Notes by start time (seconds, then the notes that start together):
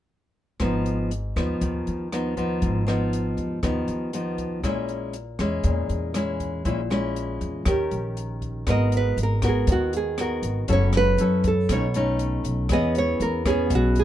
0.60 G#1 G#2 F3 B3 D#4, kick, cross-stick, closed hi-hat
0.86 closed hi-hat
1.11 closed hi-hat
1.36 D#2 F3 B3 D#4, kick, cross-stick, closed hi-hat
1.61 D#2 D#3, kick, closed hi-hat
1.87 D#2, closed hi-hat
2.12 F3 B3 D#4, cross-stick, closed hi-hat
2.37 F3 B3 D#4, kick, closed hi-hat
2.62 G#1 G#2, kick, closed hi-hat
2.87 F3 B3 D#4, cross-stick, closed hi-hat
3.13 closed hi-hat
3.37 D#2, kick, closed hi-hat
3.63 D#2 D#3 F3 B3 D#4, kick, cross-stick, closed hi-hat
3.88 D#2, closed hi-hat
4.13 F3 B3 D#4, closed hi-hat
4.38 kick, closed hi-hat
4.63 A#1 A#2 G#3 C#4 E4, kick, cross-stick, closed hi-hat
4.89 closed hi-hat
5.13 closed hi-hat
5.39 E2 G#3 C#4 E4, kick, cross-stick, closed hi-hat
5.64 E2 A#2, kick, closed hi-hat
5.89 E2, closed hi-hat
6.14 G#3 C#4 E4, cross-stick, closed hi-hat
6.40 kick, closed hi-hat
6.65 A#1 A#2 G#3 C#4 E4, kick, closed hi-hat
6.90 G#3 C#4 E4, cross-stick, closed hi-hat
7.16 closed hi-hat
7.41 E2, kick, closed hi-hat
7.65 D#2 D#3 C#4 G4 A#4, kick, cross-stick, closed hi-hat
7.91 A#1, closed hi-hat
8.17 closed hi-hat
8.42 kick, closed hi-hat
8.67 G#1 G#3 B3 F#4 A#4 D#5, kick, cross-stick, closed hi-hat
8.92 closed hi-hat
8.97 B4
9.17 G#1, closed hi-hat
9.23 A#4
9.42 B3 F#4 A#4, kick, cross-stick, closed hi-hat
9.48 G#4
9.67 D#2 D#3, kick, closed hi-hat
9.72 F#4
9.93 G#4, closed hi-hat
10.18 B3 F#4 A#4, cross-stick, closed hi-hat
10.42 G#1, closed hi-hat
10.68 F#1 F#3 C#4 E4 A4, kick, closed hi-hat
10.73 C#5
10.93 cross-stick, closed hi-hat
10.97 B4
11.17 F#2 C#4 E4 A4, closed hi-hat
11.44 A4, kick, closed hi-hat
11.69 B1 B2 A3 C#4 D#4 C#5, kick, cross-stick, closed hi-hat
11.94 A3 C#4 D#4, closed hi-hat
12.19 closed hi-hat
12.44 B1, closed hi-hat
12.69 E2 E3 B3 C#4 G#4 D#5, kick, cross-stick, closed hi-hat
12.95 C#5, closed hi-hat
13.20 E2 A#4, closed hi-hat
13.45 B3 C#4 G#4, kick, cross-stick, closed hi-hat
13.70 B1 B2, kick, closed hi-hat
13.75 F#4
13.96 G#4, closed hi-hat